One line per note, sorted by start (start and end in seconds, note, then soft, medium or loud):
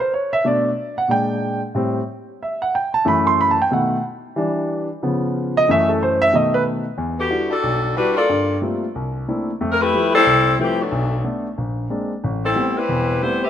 0.00 0.11 C5 medium
0.14 0.32 C#5 medium
0.33 0.44 E5 medium
0.44 0.68 B2 medium
0.44 0.68 A3 soft
0.44 0.69 D4 medium
0.44 0.95 D5 medium
0.98 1.09 F#5 medium
1.08 1.59 A#2 soft
1.08 1.60 G#3 soft
1.08 1.60 D4 soft
1.08 1.60 G5 medium
1.75 1.99 A2 medium
1.75 1.99 G3 medium
1.75 1.99 C4 medium
2.43 2.61 E5 medium
2.62 2.73 F#5 medium
2.75 2.94 G5 medium
2.94 3.05 A5 medium
3.05 3.56 F#2 medium
3.05 3.56 E3 medium
3.05 3.56 A3 medium
3.05 3.27 B5 medium
3.27 3.38 C6 medium
3.41 3.50 B5 medium
3.51 3.60 A5 medium
3.62 3.71 G5 medium
3.71 3.95 B2 medium
3.71 3.95 D#3 soft
3.71 3.95 A3 medium
3.71 4.02 F#5 medium
4.36 4.87 E3 medium
4.36 4.87 G3 medium
4.36 4.87 D4 medium
5.03 5.64 C#3 medium
5.03 5.64 F3 soft
5.03 5.65 B3 medium
5.57 5.68 D#5 loud
5.69 6.30 F#2 medium
5.69 6.30 E3 medium
5.69 6.30 A3 medium
5.69 5.89 E5 medium
5.89 6.00 A4 medium
6.03 6.21 C5 medium
6.22 6.32 E5 loud
6.32 6.83 B2 medium
6.32 6.83 D#3 soft
6.32 6.83 A3 medium
6.32 6.54 D#5 medium
6.54 6.61 B4 medium
6.98 7.26 E2 medium
7.19 7.49 D3 medium
7.19 7.49 B3 medium
7.19 7.49 F#4 medium
7.19 7.49 G4 medium
7.30 7.52 G3 soft
7.30 7.52 D4 soft
7.30 7.52 E4 soft
7.30 7.52 F#4 medium
7.50 7.92 G3 medium
7.50 7.92 D4 medium
7.50 7.92 F#4 medium
7.50 7.93 A4 loud
7.63 7.91 B1 medium
7.96 8.15 G3 medium
7.96 8.18 G3 soft
7.96 8.18 D4 soft
7.96 8.15 D4 medium
7.96 8.18 E4 soft
7.96 8.15 F#4 medium
7.96 8.18 F#4 medium
7.96 8.15 B4 loud
8.16 8.58 A#3 medium
8.16 8.58 F4 medium
8.16 8.58 A4 medium
8.16 8.58 D5 medium
8.29 8.57 G2 medium
8.61 8.83 G3 soft
8.61 8.83 A3 soft
8.61 8.83 A#3 soft
8.61 8.83 C4 soft
8.61 8.84 F4 medium
8.95 9.23 C2 medium
9.28 9.50 A3 soft
9.28 9.49 A#3 soft
9.28 9.50 C4 soft
9.28 9.50 D4 soft
9.28 9.50 E4 medium
9.61 9.88 F2 medium
9.61 9.89 A3 medium
9.72 9.80 A#4 medium
9.81 10.13 A3 loud
9.81 10.13 E4 loud
9.81 10.13 G4 loud
9.81 10.14 B4 loud
9.94 10.15 F3 soft
9.94 10.15 G3 soft
9.94 10.15 A3 soft
9.94 10.15 E4 medium
10.14 10.55 G3 medium
10.14 10.56 C4 medium
10.14 10.56 E4 medium
10.14 10.55 A4 loud
10.26 10.54 C2 medium
10.59 10.80 E3 medium
10.59 10.80 F3 soft
10.59 10.80 G3 soft
10.59 10.80 A3 soft
10.59 10.79 A3 medium
10.59 10.80 C4 medium
10.59 10.81 E4 medium
10.59 10.80 G4 loud
10.80 11.25 F#3 medium
10.80 11.25 A3 medium
10.80 11.25 B3 medium
10.80 11.25 D4 medium
10.92 11.20 B1 medium
11.24 11.46 A3 soft
11.24 11.46 B3 soft
11.24 11.46 D4 medium
11.58 11.86 A#1 medium
11.90 12.12 G#3 soft
11.90 12.12 A#3 soft
11.90 12.12 C4 soft
11.90 12.12 D4 medium
12.24 12.51 A1 medium
12.44 12.74 G3 medium
12.44 12.74 C4 medium
12.44 12.74 E4 medium
12.44 12.74 A4 medium
12.56 12.77 G3 soft
12.56 12.78 A3 soft
12.56 12.78 B3 soft
12.56 12.78 C4 medium
12.77 13.21 G3 medium
12.77 13.22 C4 medium
12.77 13.21 E4 medium
12.77 13.22 B4 medium
12.89 13.17 E1 medium
12.89 13.17 E2 medium
13.22 13.42 G3 medium
13.22 13.44 G3 soft
13.22 13.44 A3 soft
13.22 13.43 B3 medium
13.22 13.44 B3 soft
13.22 13.44 C4 medium
13.22 13.42 E4 medium
13.22 13.43 C5 medium
13.43 13.50 C4 medium
13.43 13.50 G4 medium
13.43 13.50 B4 medium
13.43 13.50 E5 medium